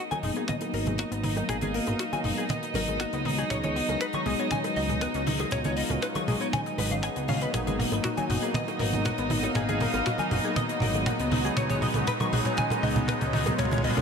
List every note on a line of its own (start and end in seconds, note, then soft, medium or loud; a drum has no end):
0.00 0.10 D#4 medium
0.00 7.52 D#4 medium
0.00 7.53 D#5 medium
0.11 0.19 F#3 medium
0.11 0.17 G#5 medium
0.11 closed hi-hat soft
0.11 high bongo soft
0.11 high conga medium
0.22 0.32 F#1 medium
0.22 1.33 F#3 medium
0.22 0.35 G#3 medium
0.22 1.34 A#3 medium
0.22 1.34 B3 medium
0.22 0.30 D#4 medium
0.22 1.34 D#4 loud
0.22 open hi-hat medium
0.22 mid tom soft
0.36 0.45 A#3 medium
0.36 0.42 G#4 medium
0.36 closed hi-hat soft
0.48 0.54 B3 medium
0.48 0.55 D#5 medium
0.48 kick loud
0.48 closed hi-hat medium
0.48 mid tom soft
0.48 high conga loud
0.61 0.70 D#4 medium
0.61 closed hi-hat medium
0.61 high bongo medium
0.73 1.05 G#1 medium
0.73 0.79 F#3 medium
0.73 0.78 A#4 medium
0.73 open hi-hat medium
0.86 0.95 G#3 medium
0.86 closed hi-hat soft
0.86 mid tom soft
0.86 high conga soft
0.86 low conga medium
0.98 1.04 A#3 medium
0.98 1.03 F#4 medium
0.98 kick loud
0.98 closed hi-hat medium
1.12 1.42 G#1 medium
1.12 1.23 B3 loud
1.12 closed hi-hat medium
1.23 1.36 D#4 medium
1.23 open hi-hat loud
1.23 mid tom soft
1.23 high conga medium
1.36 2.21 F#3 medium
1.36 1.45 F#3 medium
1.36 2.22 A#3 medium
1.36 2.22 B3 medium
1.36 1.43 D#4 medium
1.36 2.22 F5 medium
1.36 closed hi-hat medium
1.36 high bongo medium
1.49 1.80 G#1 loud
1.49 1.55 F#3 medium
1.49 1.56 G#4 loud
1.49 kick loud
1.49 closed hi-hat medium
1.49 mid tom soft
1.61 1.71 G#3 medium
1.61 1.71 G#4 medium
1.61 closed hi-hat medium
1.61 high conga medium
1.74 1.80 A#3 medium
1.74 1.78 A#4 medium
1.74 open hi-hat loud
1.87 1.95 G#1 medium
1.87 1.96 B3 medium
1.87 closed hi-hat medium
1.87 mid tom soft
1.87 high bongo medium
1.99 2.12 D#4 medium
1.99 2.04 F#4 medium
1.99 kick loud
1.99 closed hi-hat medium
2.13 2.21 F#3 loud
2.13 2.19 G#5 medium
2.13 closed hi-hat soft
2.13 high bongo medium
2.13 high conga medium
2.24 2.33 F#1 medium
2.24 2.59 F#3 medium
2.24 2.37 G#3 medium
2.24 2.60 A#3 medium
2.24 2.60 B3 medium
2.24 2.31 D#4 medium
2.24 2.60 D#4 medium
2.24 open hi-hat loud
2.24 mid tom medium
2.38 2.46 A#3 medium
2.38 2.44 G#4 medium
2.38 closed hi-hat medium
2.49 2.55 B3 medium
2.49 2.56 D#5 medium
2.49 kick loud
2.49 closed hi-hat medium
2.49 mid tom medium
2.49 high conga medium
2.63 3.10 F#3 medium
2.63 3.10 A#3 medium
2.63 3.10 B3 medium
2.63 2.71 D#4 medium
2.63 3.10 D#4 medium
2.63 closed hi-hat medium
2.74 3.06 G#1 medium
2.74 2.81 F#3 medium
2.74 2.79 A#4 medium
2.74 open hi-hat loud
2.74 high bongo medium
2.74 low conga medium
2.88 2.97 G#3 medium
2.88 closed hi-hat medium
2.88 high bongo soft
2.88 high conga medium
3.00 3.06 A#3 medium
3.00 3.04 F#4 medium
3.00 kick loud
3.00 closed hi-hat medium
3.13 3.44 C#2 medium
3.13 3.34 F#3 medium
3.13 3.35 G#3 medium
3.13 3.25 B3 loud
3.13 3.35 B3 medium
3.13 3.35 D#4 medium
3.13 closed hi-hat medium
3.25 3.38 D#4 medium
3.25 open hi-hat loud
3.25 mid tom medium
3.25 high conga medium
3.37 4.23 F#3 medium
3.37 3.47 F#3 medium
3.37 4.23 G#3 medium
3.37 4.24 B3 medium
3.37 4.24 D#4 loud
3.37 3.45 G#4 medium
3.37 closed hi-hat medium
3.50 3.82 C#2 loud
3.50 3.56 F#3 medium
3.50 3.57 C#5 loud
3.50 kick loud
3.50 closed hi-hat medium
3.50 mid tom medium
3.64 3.72 G#3 medium
3.64 3.73 C#5 medium
3.64 closed hi-hat medium
3.64 high conga loud
3.76 3.81 B3 medium
3.76 3.80 D#5 medium
3.76 open hi-hat loud
3.89 3.97 C#2 medium
3.89 3.97 C#4 medium
3.89 closed hi-hat medium
3.89 high bongo medium
4.01 4.13 D#4 medium
4.01 4.05 B4 medium
4.01 kick loud
4.01 closed hi-hat medium
4.13 4.23 F#3 loud
4.13 4.20 C#6 medium
4.13 closed hi-hat medium
4.13 high bongo soft
4.13 high conga medium
4.25 4.35 B1 medium
4.25 5.36 F#3 loud
4.25 5.37 G#3 medium
4.25 4.39 G#3 loud
4.25 5.37 B3 medium
4.25 5.37 D#4 loud
4.25 4.33 G#4 medium
4.25 open hi-hat loud
4.25 mid tom medium
4.39 4.48 B3 medium
4.39 4.45 C#5 medium
4.39 closed hi-hat medium
4.51 4.57 C#4 medium
4.51 4.58 G#5 medium
4.51 kick loud
4.51 closed hi-hat medium
4.51 mid tom medium
4.51 high conga medium
4.64 4.73 D#4 medium
4.64 closed hi-hat medium
4.64 high bongo medium
4.76 5.08 C#2 medium
4.76 4.82 F#3 medium
4.76 4.81 D#5 medium
4.76 open hi-hat medium
4.89 4.98 G#3 medium
4.89 closed hi-hat soft
4.89 mid tom medium
4.89 high conga medium
4.89 low conga medium
5.01 5.07 B3 medium
5.01 5.06 B4 medium
5.01 kick loud
5.01 closed hi-hat medium
5.14 5.46 C#2 medium
5.14 5.27 C#4 loud
5.14 closed hi-hat medium
5.27 5.39 D#4 loud
5.27 open hi-hat loud
5.27 mid tom medium
5.27 high conga loud
5.39 6.25 F#3 medium
5.39 5.49 F#3 medium
5.39 6.25 G#3 medium
5.39 6.25 B3 medium
5.39 6.26 F4 medium
5.39 5.46 G#4 medium
5.39 closed hi-hat medium
5.39 high bongo medium
5.51 5.83 C#2 medium
5.51 5.58 F#3 medium
5.51 5.59 C#5 loud
5.51 kick loud
5.51 closed hi-hat medium
5.51 mid tom medium
5.64 5.74 G#3 medium
5.64 5.75 C#5 medium
5.64 closed hi-hat medium
5.64 high conga loud
5.77 5.83 B3 medium
5.77 5.81 D#5 medium
5.77 open hi-hat loud
5.90 5.98 C#2 medium
5.90 5.99 C#4 medium
5.90 closed hi-hat medium
5.90 mid tom soft
5.90 high bongo medium
6.02 6.15 D#4 medium
6.02 6.07 B4 medium
6.02 kick loud
6.02 closed hi-hat medium
6.15 6.24 F#3 loud
6.15 6.22 C#6 medium
6.15 closed hi-hat medium
6.15 high bongo medium
6.15 high conga medium
6.27 6.36 B1 medium
6.27 6.63 F#3 medium
6.27 6.63 G#3 medium
6.27 6.40 G#3 medium
6.27 6.63 B3 medium
6.27 6.63 D#4 medium
6.27 6.34 G#4 medium
6.27 open hi-hat loud
6.27 mid tom medium
6.41 6.49 B3 medium
6.41 6.47 C#5 medium
6.41 closed hi-hat soft
6.53 6.59 C#4 medium
6.53 6.60 G#5 loud
6.53 kick loud
6.53 closed hi-hat medium
6.53 mid tom medium
6.53 high conga medium
6.65 7.13 F#3 medium
6.65 7.13 G#3 medium
6.65 7.13 B3 medium
6.65 7.14 D#4 medium
6.65 6.75 D#4 medium
6.65 closed hi-hat soft
6.78 7.10 G#1 loud
6.78 6.87 F#3 medium
6.78 6.85 B4 medium
6.78 open hi-hat loud
6.78 high bongo medium
6.78 low conga medium
6.91 7.03 C#4 medium
6.91 6.95 F5 medium
6.91 closed hi-hat medium
6.91 high bongo soft
6.91 high conga medium
7.03 7.15 B3 medium
7.03 7.07 G#5 loud
7.03 kick loud
7.03 closed hi-hat medium
7.16 7.47 C#2 medium
7.16 7.37 F#3 medium
7.16 7.38 G#3 medium
7.16 7.38 B3 medium
7.16 7.25 B3 medium
7.16 7.38 D#4 medium
7.16 closed hi-hat medium
7.28 7.34 C#4 medium
7.28 7.39 F5 medium
7.28 open hi-hat loud
7.28 mid tom medium
7.28 high conga medium
7.41 8.26 F#3 medium
7.41 8.26 A#3 medium
7.41 7.53 B3 medium
7.41 8.27 B3 medium
7.41 8.27 D#4 medium
7.41 7.48 B4 medium
7.41 closed hi-hat medium
7.54 7.85 G#1 loud
7.54 7.59 F#3 medium
7.54 14.02 D#4 medium
7.54 7.61 G#4 loud
7.54 14.02 D#5 medium
7.54 kick loud
7.54 closed hi-hat medium
7.54 mid tom medium
7.67 7.76 G#3 medium
7.67 7.76 G#4 medium
7.67 closed hi-hat medium
7.67 high conga medium
7.79 7.85 A#3 medium
7.79 7.83 A#4 medium
7.79 open hi-hat loud
7.79 mid tom medium
7.92 8.00 G#1 loud
7.92 8.01 B3 medium
7.92 closed hi-hat medium
7.92 high bongo medium
8.04 8.17 D#4 medium
8.04 8.08 F#4 medium
8.04 kick loud
8.04 closed hi-hat medium
8.04 mid tom medium
8.17 8.26 F#3 loud
8.17 8.23 G#5 medium
8.17 closed hi-hat medium
8.17 high bongo soft
8.17 high conga medium
8.29 8.38 F#1 medium
8.29 9.40 F#3 loud
8.29 9.40 A#3 medium
8.29 9.41 B3 medium
8.29 8.36 D#4 medium
8.29 9.41 D#4 loud
8.29 8.42 F#4 medium
8.29 open hi-hat loud
8.29 mid tom medium
8.43 8.51 A#3 medium
8.43 8.49 G#4 medium
8.43 closed hi-hat soft
8.54 8.60 B3 medium
8.54 8.61 D#5 loud
8.54 kick loud
8.54 closed hi-hat medium
8.54 mid tom medium
8.54 high conga medium
8.68 8.76 D#4 medium
8.68 closed hi-hat medium
8.68 high bongo medium
8.79 9.11 G#1 medium
8.79 8.86 F#3 medium
8.79 8.84 A#4 medium
8.79 open hi-hat loud
8.79 mid tom medium
8.93 9.02 G#3 medium
8.93 closed hi-hat soft
8.93 high conga medium
8.93 low conga medium
9.05 9.11 A#3 medium
9.05 9.09 F#4 medium
9.05 kick loud
9.05 closed hi-hat medium
9.05 mid tom medium
9.18 9.49 G#1 medium
9.18 9.30 B3 loud
9.18 closed hi-hat medium
9.30 9.43 D#4 loud
9.30 open hi-hat loud
9.30 mid tom medium
9.30 high conga medium
9.42 10.28 F#3 medium
9.42 9.52 F#3 medium
9.42 10.28 A#3 medium
9.42 10.28 B3 medium
9.42 9.50 D#4 medium
9.42 10.29 F5 medium
9.42 closed hi-hat medium
9.42 high bongo medium
9.55 9.87 G#1 loud
9.55 9.61 F#3 medium
9.55 9.62 G#4 loud
9.55 kick loud
9.55 closed hi-hat medium
9.55 mid tom medium
9.69 9.77 G#3 medium
9.69 9.78 G#4 loud
9.69 closed hi-hat medium
9.69 high conga medium
9.80 9.86 A#3 medium
9.80 9.85 A#4 medium
9.80 open hi-hat loud
9.80 mid tom medium
9.94 10.02 G#1 medium
9.94 10.02 B3 medium
9.94 closed hi-hat medium
9.94 high bongo medium
10.06 10.19 D#4 medium
10.06 10.10 F#4 medium
10.06 kick loud
10.06 closed hi-hat medium
10.06 mid tom medium
10.18 10.28 F#3 loud
10.18 10.25 G#5 medium
10.18 closed hi-hat medium
10.18 high bongo medium
10.18 high conga medium
10.31 10.40 F#1 medium
10.31 10.66 F#3 medium
10.31 10.66 A#3 medium
10.31 10.67 B3 medium
10.31 10.38 D#4 medium
10.31 10.67 D#4 medium
10.31 10.44 F#4 medium
10.31 open hi-hat loud
10.31 mid tom medium
10.44 10.53 A#3 medium
10.44 10.51 G#4 medium
10.44 closed hi-hat medium
10.56 10.62 B3 medium
10.56 10.63 D#5 loud
10.56 kick loud
10.56 closed hi-hat medium
10.56 mid tom medium
10.56 high conga medium
10.69 11.16 F#3 medium
10.69 11.17 A#3 medium
10.69 11.17 B3 medium
10.69 10.78 D#4 medium
10.69 11.17 D#4 medium
10.69 closed hi-hat medium
10.80 11.13 G#1 medium
10.80 10.87 F#3 medium
10.80 10.86 A#4 medium
10.80 open hi-hat loud
10.80 mid tom medium
10.80 high bongo medium
10.80 low conga medium
10.94 11.03 G#3 medium
10.94 closed hi-hat medium
10.94 high bongo soft
10.94 high conga medium
11.06 11.12 A#3 medium
11.06 11.11 F#4 medium
11.06 kick loud
11.06 closed hi-hat medium
11.06 mid tom medium
11.19 11.51 C#2 loud
11.19 11.41 F#3 medium
11.19 11.41 G#3 medium
11.19 11.41 B3 medium
11.19 11.32 B3 loud
11.19 11.41 D#4 medium
11.19 closed hi-hat medium
11.31 11.45 D#4 loud
11.31 open hi-hat loud
11.31 mid tom medium
11.31 high conga medium
11.44 12.29 F#3 medium
11.44 11.54 F#3 medium
11.44 12.30 G#3 medium
11.44 12.30 B3 medium
11.44 12.30 D#4 medium
11.44 11.51 G#4 medium
11.44 closed hi-hat soft
11.57 11.88 C#2 loud
11.57 11.63 F#3 medium
11.57 11.64 C#5 loud
11.57 kick loud
11.57 closed hi-hat medium
11.57 mid tom medium
11.70 11.79 G#3 medium
11.70 11.79 C#5 loud
11.70 closed hi-hat medium
11.70 mid tom medium
11.70 high conga loud
11.82 11.88 B3 medium
11.82 11.87 D#5 medium
11.82 open hi-hat medium
11.82 mid tom medium
11.94 12.03 C#2 medium
11.94 12.04 C#4 medium
11.94 closed hi-hat medium
11.94 mid tom medium
11.94 high bongo medium
12.07 12.20 D#4 medium
12.07 12.12 B4 medium
12.07 kick loud
12.07 closed hi-hat medium
12.07 mid tom medium
12.20 12.29 F#3 loud
12.20 12.27 C#6 medium
12.20 closed hi-hat medium
12.20 mid tom medium
12.20 high bongo medium
12.20 high conga medium
12.32 12.41 B1 medium
12.32 13.43 F#3 loud
12.32 13.43 G#3 medium
12.32 13.44 B3 medium
12.32 13.44 D#4 loud
12.32 12.45 F#4 medium
12.32 12.39 G#4 medium
12.32 open hi-hat loud
12.32 mid tom loud
12.45 12.54 B3 medium
12.45 12.52 C#5 medium
12.45 closed hi-hat medium
12.45 mid tom medium
12.57 12.64 C#4 medium
12.57 12.65 G#5 loud
12.57 kick loud
12.57 closed hi-hat medium
12.57 mid tom medium
12.57 high conga medium
12.70 12.79 D#4 medium
12.70 closed hi-hat medium
12.70 mid tom medium
12.70 high bongo medium
12.83 13.14 C#2 medium
12.83 12.89 F#3 medium
12.83 12.87 D#5 medium
12.83 open hi-hat loud
12.83 mid tom medium
12.96 13.05 G#3 medium
12.96 closed hi-hat medium
12.96 mid tom medium
12.96 high conga medium
12.96 low conga medium
13.08 13.14 B3 medium
13.08 13.12 B4 medium
13.08 kick loud
13.08 closed hi-hat medium
13.08 mid tom loud
13.21 13.52 C#2 loud
13.21 13.33 C#4 loud
13.21 closed hi-hat medium
13.21 mid tom medium
13.33 13.46 D#4 loud
13.33 open hi-hat loud
13.33 mid tom loud
13.33 high conga medium
13.46 14.02 F#3 medium
13.46 13.55 F#3 medium
13.46 14.02 G#3 medium
13.46 14.02 B3 medium
13.46 14.02 F4 medium
13.46 13.53 G#4 medium
13.46 closed hi-hat medium
13.46 mid tom medium
13.46 high bongo medium
13.58 13.90 C#2 loud
13.58 13.64 F#3 medium
13.58 13.65 C#5 loud
13.58 kick loud
13.58 closed hi-hat medium
13.58 mid tom loud
13.65 mid tom medium
13.71 13.80 G#3 medium
13.71 13.81 C#5 loud
13.71 closed hi-hat medium
13.71 mid tom medium
13.71 high conga medium
13.78 mid tom loud
13.84 13.90 B3 medium
13.84 13.88 D#5 medium
13.84 open hi-hat loud
13.84 mid tom medium
13.91 mid tom medium
13.97 14.02 C#2 loud
13.97 14.02 C#4 medium
13.97 closed hi-hat medium
13.97 mid tom loud
13.97 high bongo medium